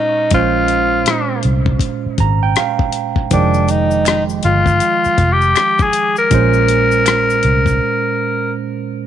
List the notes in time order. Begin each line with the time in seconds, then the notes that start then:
Already playing: A#2 G#3 C#4 D#4 C5
0.31 A#1 A#2 G#3 C#4 F4 C5, kick, closed hi-hat
0.68 closed hi-hat
1.06 cross-stick, closed hi-hat
1.43 C2, closed hi-hat
1.66 kick
1.80 kick, closed hi-hat
2.06 muted fingered electric bass stroke
2.18 G#1 A#5, kick, closed hi-hat
2.43 G5
2.56 F5, cross-stick, closed hi-hat
2.79 kick
2.92 closed hi-hat
3.16 kick
3.31 F1 D#3 F3 G#3 D4 G5, kick, closed hi-hat, shaker
3.54 shaker
3.68 D#4, closed hi-hat, shaker
3.91 shaker
4.05 D#4, finger snap, cross-stick, closed hi-hat, shaker
4.29 shaker
4.43 G1 F4, closed hi-hat
4.66 kick, shaker
4.80 closed hi-hat, shaker
5.04 muted fingered electric bass stroke, shaker
5.18 F1, kick, closed hi-hat
5.32 G4
5.41 shaker
5.56 finger snap, cross-stick, closed hi-hat, shaker
5.79 G#4, kick, shaker
5.93 closed hi-hat, shaker
6.16 A#4, shaker
6.30 A#1 A#2 G#3 C#4 C5, kick, closed hi-hat, shaker
6.54 shaker
6.68 closed hi-hat, shaker
6.91 shaker
7.06 finger snap, cross-stick, closed hi-hat, shaker
7.30 shaker
7.43 C2, closed hi-hat
7.66 kick, shaker